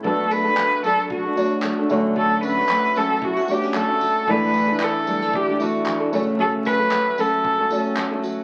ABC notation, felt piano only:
X:1
M:4/4
L:1/8
Q:"Swing 16ths" 1/4=114
K:Bm
V:1 name="Felt piano"
[A,DFB]3 z2 [A,DFc]2 [A,DFc]- | [A,DFc]2 z3 [A,DFc]2 z | [A,DEd]3 z2 [A,DEA]2 [A,CFc]- | [A,CFc]2 z3 [A,CFc]2 z |]